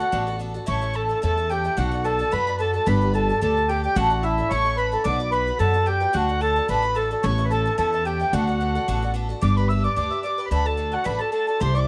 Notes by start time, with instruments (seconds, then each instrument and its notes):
Already playing: accordion F#4, tin whistle F#5
0.00 twelve-string acoustic guitar D4 F#4 A4
0.12 upright bass A1, twelve-string acoustic guitar D3 B3 D4 F#4 A4
0.27 twelve-string acoustic guitar D4 F#4 A4
0.39 twelve-string acoustic guitar B3 D4 F#4 A4
0.54 twelve-string acoustic guitar D4 F#4 A4
0.66 upright bass A1, twelve-string acoustic guitar A2 E3 A3 C#4 E4 A4, accordion C#5, tin whistle C#6
0.82 twelve-string acoustic guitar A3 C#4 E4 A4
0.93 twelve-string acoustic guitar A3 C#4 E4 A4, accordion A4, tin whistle A5
1.04 accordion A4
1.09 twelve-string acoustic guitar A3 C#4 E4 A4
1.13 accordion A4, tin whistle A5
1.22 upright bass E2, twelve-string acoustic guitar A2 E3 A3 C#4 E4 A4, accordion A4, tin whistle A5
1.37 twelve-string acoustic guitar A3 C#4 E4 A4
1.49 twelve-string acoustic guitar A3 C#4 E4 A4, accordion G4, tin whistle G5
1.64 twelve-string acoustic guitar A3 C#4 E4 A4
1.77 upright bass B1, twelve-string acoustic guitar B3 D4 F#4 A4, accordion F#4, tin whistle F#5
1.92 twelve-string acoustic guitar D4 F#4 A4
2.04 twelve-string acoustic guitar B3 D4 F#4 A4, accordion A4, tin whistle A5
2.19 twelve-string acoustic guitar D4 F#4 A4
2.31 upright bass F#2, twelve-string acoustic guitar B3 D4 F#4 A4, accordion B4, tin whistle B5
2.47 twelve-string acoustic guitar D4 F#4 A4
2.59 twelve-string acoustic guitar B3 D4 F#4 A4, accordion A4, tin whistle A5
2.73 twelve-string acoustic guitar D4 F#4 A4, accordion A4, tin whistle A5
2.86 upright bass G1, twelve-string acoustic guitar G3 B3 D4 G4 A4, accordion B4, tin whistle B5
3.01 twelve-string acoustic guitar D4 G4 A4
3.14 twelve-string acoustic guitar B3 D4 G4 A4, accordion A4, tin whistle A5
3.29 twelve-string acoustic guitar D4 G4 A4
3.41 upright bass D2, twelve-string acoustic guitar G3 B3 D4 G4 A4, accordion A4, tin whistle A5
3.57 twelve-string acoustic guitar D4 G4 A4
3.69 twelve-string acoustic guitar B3 D4 G4 A4, accordion G4, tin whistle G5
3.84 twelve-string acoustic guitar D4 G4 A4, accordion G4, tin whistle G5
3.95 upright bass A1, twelve-string acoustic guitar A2 D3 A3 D4 E4 A4, accordion F#4, tin whistle F#5
4.10 twelve-string acoustic guitar A3 D4 E4 A4
4.23 twelve-string acoustic guitar A3 D4 E4 A4, accordion E4, tin whistle E5
4.38 twelve-string acoustic guitar A3 D4 E4 A4
4.50 upright bass A1, twelve-string acoustic guitar A2 E3 A3 C#4 E4 A4, accordion C#5, tin whistle C#6
4.65 twelve-string acoustic guitar A3 C#4 E4 A4
4.77 twelve-string acoustic guitar A3 C#4 E4 A4, accordion B4, tin whistle B5
4.92 twelve-string acoustic guitar A3 C#4 E4 A4, accordion A4
5.04 upright bass B1, twelve-string acoustic guitar B2 F#3 B3 D4 F#4 B4, accordion D5, tin whistle D6
5.20 twelve-string acoustic guitar B3 D4 F#4 B4
5.32 twelve-string acoustic guitar B3 D4 F#4 B4, accordion B4, tin whistle B5
5.47 twelve-string acoustic guitar B3 D4 F#4 B4
5.59 upright bass F#2, twelve-string acoustic guitar B2 F#3 B3 D4 F#4 B4, accordion A4, tin whistle A5
5.74 twelve-string acoustic guitar B3 D4 F#4 B4
5.86 twelve-string acoustic guitar B3 D4 F#4 B4, accordion G4, tin whistle G5
6.00 twelve-string acoustic guitar B3 D4 F#4 B4
6.13 upright bass D2, twelve-string acoustic guitar D3 A3 D4 F#4 A4, accordion F#4, tin whistle F#5
6.29 twelve-string acoustic guitar D4 F#4 A4
6.41 twelve-string acoustic guitar A3 D4 F#4 A4, accordion A4, tin whistle A5
6.56 twelve-string acoustic guitar D4 F#4 A4
6.68 upright bass A1, twelve-string acoustic guitar D3 A3 D4 F#4 A4, accordion B4, tin whistle B5
6.82 twelve-string acoustic guitar D4 F#4 A4
6.95 twelve-string acoustic guitar A3 D4 F#4 A4, accordion A4, tin whistle A5
7.11 twelve-string acoustic guitar D4 F#4 A4, accordion A4
7.23 upright bass A1, twelve-string acoustic guitar A2 E3 B3 C#4 E4 A4, accordion C#5, tin whistle C#6
7.38 twelve-string acoustic guitar B3 C#4 E4 A4
7.45 accordion B4
7.51 twelve-string acoustic guitar B3 C#4 E4 A4, accordion A4, tin whistle A5
7.66 twelve-string acoustic guitar B3 C#4 E4 A4
7.78 upright bass E2, twelve-string acoustic guitar A2 E3 B3 C#4 E4 A4, accordion A4, tin whistle A5
7.93 twelve-string acoustic guitar B3 C#4 E4 A4, tin whistle A5
8.05 twelve-string acoustic guitar B3 C#4 E4 A4, accordion G4, tin whistle G5
8.20 twelve-string acoustic guitar B3 C#4 E4 A4
8.33 upright bass D2, twelve-string acoustic guitar D3 B3 D4 F#4 A4, accordion F#4, tin whistle F#5
8.47 twelve-string acoustic guitar D4 F#4 A4
8.60 twelve-string acoustic guitar B3 D4 F#4 A4
8.75 twelve-string acoustic guitar D4 F#4 A4
8.88 upright bass A1, twelve-string acoustic guitar D3 B3 D4 F#4 A4
9.02 twelve-string acoustic guitar D4 F#4 A4
9.14 twelve-string acoustic guitar B3 D4 F#4 A4
9.29 twelve-string acoustic guitar D4 F#4 A4
9.41 upright bass G1, twelve-string acoustic guitar G3 D4 G4 B4, accordion D5, tin whistle D6
9.57 twelve-string acoustic guitar D4 G4 B4, accordion B4, tin whistle B5
9.68 twelve-string acoustic guitar G3 D4 G4 B4, accordion E5, tin whistle E6
9.84 twelve-string acoustic guitar D4 G4 B4, accordion D5, tin whistle D6
9.96 upright bass D2, twelve-string acoustic guitar G3 D4 G4 B4, accordion D5, tin whistle D6
10.11 twelve-string acoustic guitar D4 G4 B4, accordion E5
10.23 twelve-string acoustic guitar G3 D4 G4 B4, accordion D5, tin whistle D6
10.38 twelve-string acoustic guitar D4 G4 B4
10.45 accordion B4, tin whistle B5
10.51 upright bass D2, twelve-string acoustic guitar D3 A3 D4 F#4 A4, accordion B4, tin whistle B5
10.65 twelve-string acoustic guitar D4 F#4 A4, accordion A4, tin whistle A5
10.77 twelve-string acoustic guitar A3 D4 F#4 A4
10.92 twelve-string acoustic guitar D4 F#4 A4, accordion F#4, tin whistle F#5
11.04 upright bass A1, twelve-string acoustic guitar D3 A3 D4 F#4 A4, accordion B4, tin whistle B5
11.19 twelve-string acoustic guitar D4 F#4 A4, accordion A4, tin whistle A5
11.32 twelve-string acoustic guitar A3 D4 F#4 A4, accordion A4, tin whistle A5
11.47 twelve-string acoustic guitar D4 F#4 A4, accordion A4, tin whistle A5
11.60 upright bass C2, twelve-string acoustic guitar C3 E3 G3 D4 E4 C5, accordion C5, tin whistle C6
11.74 twelve-string acoustic guitar G3 D4 E4 C5, accordion D5, tin whistle D6